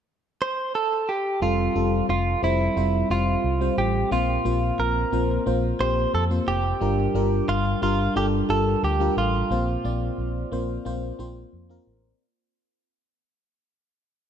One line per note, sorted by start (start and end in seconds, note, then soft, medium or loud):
0.42 0.75 C5 medium
0.75 1.09 A4 medium
1.09 1.42 G4 medium
1.41 1.66 F1 loud
1.41 1.71 G3 medium
1.41 1.72 C4 medium
1.41 1.72 F4 medium
1.41 2.06 F4 medium
1.41 1.72 A4 medium
1.75 2.00 F1 medium
1.75 2.35 G3 medium
1.75 2.35 C4 medium
1.75 2.35 F4 medium
1.75 2.35 A4 medium
2.09 2.33 F1 medium
2.09 2.44 F4 medium
2.42 2.67 F1 medium
2.42 2.72 G3 medium
2.42 2.73 C4 medium
2.42 3.11 E4 medium
2.42 2.73 F4 medium
2.42 2.73 C5 medium
2.76 3.01 F1 medium
2.76 3.06 G3 medium
2.76 3.06 C4 medium
2.76 3.07 F4 medium
2.76 3.07 C5 medium
3.10 3.34 F1 medium
3.10 3.55 G3 medium
3.10 3.55 C4 medium
3.10 3.55 F4 medium
3.10 3.78 F4 medium
3.10 3.55 C5 medium
3.44 3.68 C2 medium
3.60 4.05 G3 medium
3.60 4.06 C4 medium
3.60 4.06 F4 medium
3.60 4.06 C5 medium
3.77 4.02 A1 medium
3.77 4.12 G4 medium
4.11 4.36 A#1 medium
4.11 5.09 A#2 medium
4.11 4.41 A#3 medium
4.11 4.41 C4 medium
4.11 4.41 F4 medium
4.11 4.81 F4 medium
4.11 4.42 C5 medium
4.45 4.69 A#1 medium
4.45 5.05 A#3 medium
4.45 5.05 C4 medium
4.45 5.05 F4 medium
4.45 5.05 C5 medium
4.79 5.03 A#1 medium
4.79 5.43 A#4 medium
5.12 5.37 A#1 medium
5.12 5.42 A#3 medium
5.12 5.42 C4 medium
5.12 5.43 F4 medium
5.12 5.43 C5 medium
5.46 5.71 A#1 medium
5.46 5.76 A#3 medium
5.46 5.76 C4 medium
5.46 5.76 F4 medium
5.46 5.76 C5 medium
5.79 6.04 A#1 medium
5.79 6.24 A#3 medium
5.79 6.25 C4 medium
5.79 6.25 F4 medium
5.79 6.25 G4 medium
5.79 6.14 C5 medium
6.14 6.38 F2 medium
6.14 6.24 A4 medium
6.30 6.75 A#3 medium
6.30 6.75 C4 medium
6.30 6.75 F4 medium
6.30 6.76 C5 medium
6.47 6.72 F1 medium
6.47 7.49 G4 medium
6.81 7.05 G1 loud
6.81 7.78 G2 medium
6.81 7.11 G3 medium
6.81 7.11 D4 medium
6.81 7.11 F4 medium
6.81 7.11 A#4 medium
7.14 7.39 G1 medium
7.14 7.74 G3 medium
7.14 7.75 D4 medium
7.14 7.75 F4 medium
7.14 7.75 A#4 medium
7.48 7.73 G1 medium
7.48 7.80 F4 medium
7.82 8.06 G1 medium
7.82 8.12 G3 medium
7.82 8.12 D4 medium
7.82 8.12 F4 medium
7.82 8.16 F4 medium
7.82 8.12 A#4 medium
8.15 8.40 G1 loud
8.15 8.46 G3 medium
8.15 8.46 D4 medium
8.15 8.46 F4 medium
8.15 8.26 G4 medium
8.15 8.46 A4 medium
8.49 8.74 G1 medium
8.49 8.94 G3 medium
8.49 8.94 D4 medium
8.49 8.94 F4 medium
8.49 8.84 A4 medium
8.49 8.95 A4 medium
8.83 9.07 D2 medium
8.83 9.15 G4 medium
9.00 9.45 G3 medium
9.00 9.45 D4 medium
9.00 9.45 F4 medium
9.00 9.45 A#4 medium
9.17 9.41 A1 medium
9.17 11.49 F4 medium
9.50 9.75 A#1 loud
9.50 10.48 A#2 medium
9.50 9.81 A#3 medium
9.50 9.81 C4 medium
9.50 9.81 F4 medium
9.50 9.81 C5 medium
9.84 10.09 A#1 medium
9.84 10.44 A#3 medium
9.84 10.44 C4 medium
9.84 10.44 F4 medium
9.84 10.45 D5 medium
10.18 10.42 A#1 medium
10.52 10.76 A#1 medium
10.52 10.82 A#3 medium
10.52 10.82 C4 medium
10.52 10.82 F4 medium
10.52 10.82 C5 medium
10.85 11.10 A#1 medium
10.85 11.15 A#3 medium
10.85 11.15 C4 medium
10.85 11.16 F4 medium
10.85 11.16 C5 medium
11.19 11.43 A#1 medium
11.19 11.64 A#3 medium
11.19 11.64 C4 medium
11.19 11.64 F4 medium
11.19 11.64 C5 medium
11.53 11.77 F2 medium
11.69 12.14 A#3 medium
11.69 12.15 C4 medium
11.69 12.15 F4 medium
11.69 12.15 A#4 medium
11.87 12.11 A1 medium